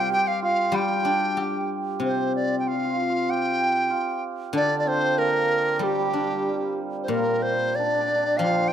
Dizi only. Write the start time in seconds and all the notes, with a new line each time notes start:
Already playing: G5
0.12 G5
0.27 F5
0.43 F5
0.76 G5
2.05 C5
2.36 D5
2.60 G5
2.68 F5
3.30 G5
4.57 D5
4.79 D5
4.88 C5
5.18 A#4
5.76 A#4
5.83 G4
7.03 C5
7.10 A#4
7.42 C5
7.75 D5
8.37 F5
8.68 G5